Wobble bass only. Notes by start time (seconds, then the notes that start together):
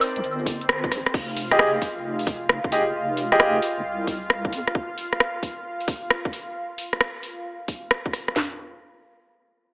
0.16 C2
0.24 G1
0.92 A#1
1.14 F1
1.97 F1
2.64 F1
2.95 F1
3.77 F1
3.85 C2
4.52 F2